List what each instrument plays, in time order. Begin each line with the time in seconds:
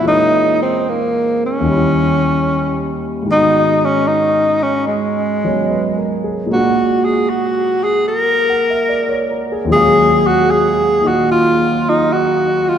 Already playing: grand piano A#2
0.01 grand piano E3 G#3
0.06 grand piano C#4 A#4, tenor saxophone D#4
0.62 tenor saxophone C4
0.89 tenor saxophone A#3
1.46 tenor saxophone C#4
1.61 grand piano D#2 D#3
1.66 grand piano G3 C#4
1.71 grand piano E4
3.22 grand piano G#2 D#3
3.29 grand piano G#3 B3, tenor saxophone D#4
3.34 grand piano F#4
3.85 tenor saxophone C#4
4.07 tenor saxophone D#4
4.63 tenor saxophone C#4
4.87 tenor saxophone G#3
5.44 grand piano F#3 B3 C#4 G#4 C#5
5.71 grand piano B4
5.97 grand piano A#4
6.24 grand piano G#4
6.46 grand piano A#2 G#3
6.51 grand piano A#3 D4, tenor saxophone F#4
6.56 grand piano F#4
7.05 tenor saxophone G#4
7.30 tenor saxophone F#4
7.84 tenor saxophone G#4
8.08 tenor saxophone A#4
8.50 grand piano F#5
8.70 grand piano E5
8.89 grand piano D5
9.09 grand piano C#5
9.30 grand piano A#4
9.52 grand piano G#4
9.65 grand piano D#2 A#2
9.70 grand piano F#3 G#3, tenor saxophone G#4
9.74 grand piano C#4 F5
10.27 tenor saxophone F#4
10.51 tenor saxophone G#4
11.01 grand piano A#2 D#3 A#3 D#4
11.08 tenor saxophone F#4
11.31 tenor saxophone F4
11.89 tenor saxophone D#4
12.13 tenor saxophone F#4
12.69 tenor saxophone F4